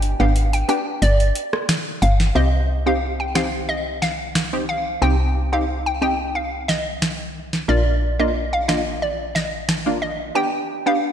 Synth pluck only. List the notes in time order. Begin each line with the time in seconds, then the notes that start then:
0.20 F5
0.53 G5
0.69 G5
1.02 D5
2.02 F5
2.36 D#5
2.87 F5
3.20 G5
3.36 F5
3.69 D#5
4.02 F5
4.69 F5
5.02 G5
5.53 F5
5.86 G5
6.02 G5
6.35 F5
6.68 D#5
7.69 D5
8.20 D#5
8.53 F5
8.68 D#5
9.02 D5
9.35 D#5
10.02 D#5
10.35 G5
10.87 F5